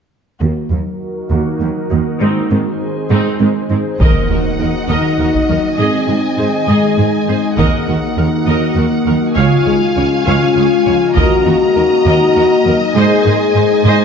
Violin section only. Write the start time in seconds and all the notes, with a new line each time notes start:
4.00 D#5 F#5
5.80 G#5
7.58 F#5
9.37 F5 G#5
11.17 D#5 A#5
12.96 G#5